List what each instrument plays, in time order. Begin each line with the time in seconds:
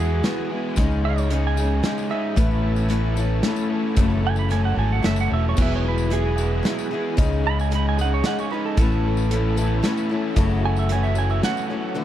Already playing: fingered electric bass E2, steel-string acoustic guitar E3 B3 F#4 G#4, tonewheel organ B3 E4 F#4 G#4, overdriven electric guitar G#4
0.00 overdriven electric guitar E2 E3 G#3 B3 E4, electric slide guitar G#4
0.23 steel-string acoustic guitar E3 F#4, overdriven electric guitar G#3 B3 E4, snare, closed hi-hat
0.28 overdriven electric guitar G#4
0.50 overdriven electric guitar G#3 B3 E4 G#4
0.75 fingered electric bass C#2, overdriven electric guitar C#3 G#3 C#4 D#4 G#4, tonewheel organ G#3 C#4 D#4 G#4, kick, closed hi-hat, tambourine
0.91 tambourine
1.03 overdriven electric guitar C#4 D#4 G#4, electric slide guitar F#5
1.18 electric slide guitar C#5, tambourine
1.29 overdriven electric guitar G#3 C#4 D#4 G#4, closed hi-hat
1.47 electric slide guitar G#5
1.56 overdriven electric guitar C#3 G#3 C#4 D#4 G#4, tambourine
1.83 overdriven electric guitar G#3 C#4 D#4 G#4, snare, closed hi-hat
1.98 tambourine
2.09 overdriven electric guitar C#4 D#4 G#4, electric slide guitar E5
2.35 fingered electric bass A1, overdriven electric guitar A2 E3 A3 C#4 A4, tonewheel organ B3 C#4 A4, steel-string acoustic guitar E4 B4, kick, closed hi-hat, tambourine
2.39 tonewheel organ E4
2.51 tambourine
2.62 overdriven electric guitar C#4 A4
2.66 overdriven electric guitar A3
2.76 tambourine
2.88 overdriven electric guitar E3 A3 C#4 A4, steel-string acoustic guitar E4 B4, closed hi-hat
3.15 overdriven electric guitar A2 E3 A3 C#4 A4, steel-string acoustic guitar E4 B4, tambourine
3.42 overdriven electric guitar E3 A3 C#4 A4, steel-string acoustic guitar E4, snare, closed hi-hat
3.47 steel-string acoustic guitar B4
3.56 tambourine
3.70 overdriven electric guitar A3 C#4 A4
3.96 fingered electric bass F#1, overdriven electric guitar F#2 C#3 F#3 A3 C#4 A4, steel-string acoustic guitar E3, tonewheel organ A3 C#4 E4 F#4, kick, closed hi-hat, tambourine
4.10 tambourine
4.23 overdriven electric guitar F#3 A3 C#4 A4, electric slide guitar G#5
4.36 electric slide guitar B5, tambourine
4.49 steel-string acoustic guitar E3, overdriven electric guitar F#3 A3 C#4, electric slide guitar G#5, closed hi-hat, tambourine
4.53 overdriven electric guitar A4
4.65 electric slide guitar F#5
4.75 fingered electric bass G#1, overdriven electric guitar F#2 C#3 F#3 A3 C#4 A4, electric slide guitar G#5
4.92 electric slide guitar F#5
5.01 fingered electric bass F#1, steel-string acoustic guitar E3, overdriven electric guitar F#3 A3 C#4 A4, snare, closed hi-hat, tambourine
5.06 electric slide guitar E5
5.16 tambourine
5.21 electric slide guitar F#5
5.28 fingered electric bass E1, overdriven electric guitar F#3 A3 C#4 A4
5.33 electric slide guitar E5
5.49 electric slide guitar C#5
5.55 fingered electric bass E1, overdriven electric guitar E2 B2 E3 B3 E4 G#4, steel-string acoustic guitar F#3, tonewheel organ G#3 B3 E4 F#4, kick, crash, tambourine
5.62 electric slide guitar E5
5.71 tambourine
5.76 electric slide guitar C#5
5.83 overdriven electric guitar E3 B3 E4 G#4
5.88 electric slide guitar B4
5.98 tambourine
6.09 overdriven electric guitar E3 B3 E4, steel-string acoustic guitar F#3, closed hi-hat
6.13 overdriven electric guitar G#4, electric slide guitar G#4
6.36 overdriven electric guitar E2 B2 E3 B3 E4 G#4, tambourine
6.63 overdriven electric guitar E3 B3 E4 G#4, steel-string acoustic guitar F#3, snare, closed hi-hat
6.79 tambourine
6.91 overdriven electric guitar B3 E4 G#4
6.95 overdriven electric guitar E3
7.18 fingered electric bass C#2, overdriven electric guitar C#3 G#3 C#4 D#4 G#4, tonewheel organ G#3 C#4 D#4 G#4, kick, closed hi-hat, tambourine
7.33 tambourine
7.43 overdriven electric guitar C#4 D#4 G#4, electric slide guitar B5
7.59 electric slide guitar G#5, tambourine
7.71 overdriven electric guitar G#3 C#4 D#4 G#4, closed hi-hat
7.75 electric slide guitar B5
7.89 electric slide guitar G#5
7.97 overdriven electric guitar C#3 G#3 C#4 D#4 G#4, electric slide guitar F#5, tambourine
8.14 electric slide guitar C#5
8.24 overdriven electric guitar G#3 C#4 D#4 G#4, electric slide guitar F#5, snare, closed hi-hat
8.39 electric slide guitar C#5, tambourine
8.51 overdriven electric guitar C#4 D#4 G#4, electric slide guitar B4
8.66 electric slide guitar A4
8.77 fingered electric bass A1, overdriven electric guitar A2 E3 A3 C#4 A4, tonewheel organ B3 C#4 E4 A4, steel-string acoustic guitar E4, electric slide guitar A4, kick, closed hi-hat, tambourine
8.81 steel-string acoustic guitar B4
8.92 tambourine
9.04 overdriven electric guitar A3 C#4 A4
9.17 tambourine
9.30 overdriven electric guitar E3 A3 C#4, steel-string acoustic guitar E4 B4, closed hi-hat
9.34 overdriven electric guitar A4
9.56 overdriven electric guitar A2 E3 A3 C#4 A4, steel-string acoustic guitar E4 B4, tambourine
9.82 overdriven electric guitar E3 A3 C#4 A4, steel-string acoustic guitar E4 B4, snare, closed hi-hat
9.98 tambourine
10.09 overdriven electric guitar C#4 A4, steel-string acoustic guitar E4 B4
10.14 overdriven electric guitar A3
10.36 fingered electric bass F#1, overdriven electric guitar F#2 C#3 F#3 A3 C#4 F#4, steel-string acoustic guitar E3 A4, tonewheel organ C#4 E4 F#4 A4, kick, closed hi-hat, tambourine
10.50 tambourine
10.62 overdriven electric guitar F#3 A3 C#4 F#4, electric slide guitar G#5
10.76 electric slide guitar E5, tambourine
10.87 steel-string acoustic guitar E3, overdriven electric guitar F#3 A3 C#4 F#4, closed hi-hat
10.92 steel-string acoustic guitar A4, electric slide guitar G#5
11.03 electric slide guitar E5, tambourine
11.15 overdriven electric guitar F#2 C#3 F#3 A3 C#4 F#4, electric slide guitar G#5, tambourine
11.30 electric slide guitar E5, tambourine
11.41 steel-string acoustic guitar E3, overdriven electric guitar F#3 A3 C#4 F#4, electric slide guitar F#5, snare, closed hi-hat
11.47 steel-string acoustic guitar A4
11.57 tambourine
11.67 overdriven electric guitar F#3 A3 C#4 F#4, steel-string acoustic guitar A4
11.73 steel-string acoustic guitar E3
11.95 overdriven electric guitar D3, steel-string acoustic guitar E3 A3 E4 F#4